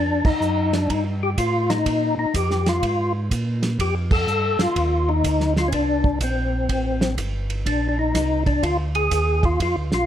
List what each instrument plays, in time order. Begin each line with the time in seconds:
Already playing: tonewheel organ F2 D4
0.25 tonewheel organ F2 D#4, kick, crash
0.40 tonewheel organ F#2, hi-hat pedal
0.73 tonewheel organ D4, snare, ride
0.89 tonewheel organ G2 D#4, kick, ride
1.23 tonewheel organ G4
1.38 tonewheel organ A2 F4, kick, hi-hat pedal, ride
1.70 tonewheel organ D#4, snare, ride
1.86 tonewheel organ A#2, kick, ride
2.17 tonewheel organ A#2 D#4
2.34 tonewheel organ F2 G4, kick, hi-hat pedal, ride
2.51 snare
2.66 tonewheel organ F4, snare, ride
2.82 tonewheel organ G#2, kick, ride
3.31 tonewheel organ A#2, kick, hi-hat pedal, ride
3.63 snare, ride
3.79 tonewheel organ F2 G4, kick, ride
4.11 tonewheel organ A4, kick, crash
4.27 tonewheel organ G2, hi-hat pedal
4.59 tonewheel organ G2 F4, snare, ride
4.75 tonewheel organ D#2, kick, ride
5.09 tonewheel organ D#4
5.24 tonewheel organ D2, kick, hi-hat pedal, ride
5.40 snare
5.56 tonewheel organ F4, snare
5.68 tonewheel organ C2 C#4
5.72 tonewheel organ D4, kick, ride
6.04 kick
6.20 tonewheel organ A#1 C4, kick, hi-hat pedal, ride
6.69 tonewheel organ A1, kick, ride
7.01 snare
7.17 tonewheel organ G1, kick, hi-hat pedal, ride
7.50 ride
7.66 tonewheel organ A#1 D4, kick, ride
7.89 tonewheel organ D4
7.99 tonewheel organ D#4
8.14 tonewheel organ C2, kick, snare, hi-hat pedal, ride
8.46 tonewheel organ D4, kick, ride
8.63 tonewheel organ D2 F4, kick, ride
8.95 tonewheel organ G#4, ride
9.11 tonewheel organ D#2, kick, hi-hat pedal, ride
9.43 tonewheel organ F4, kick, ride
9.60 tonewheel organ F2 F4, kick, ride
9.76 tonewheel organ D2
9.92 tonewheel organ B1 F4, snare